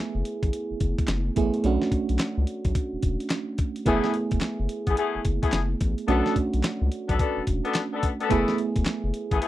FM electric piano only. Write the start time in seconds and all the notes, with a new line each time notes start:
Already playing: A3 B3 E4 G#4
1.36 A3 B3 E4 G#4
1.64 A3 C#4 D4 F#4
3.86 A3 B3 E4 G#4
6.08 A3 C#4 D4 F#4
8.29 A3 B3 E4 G#4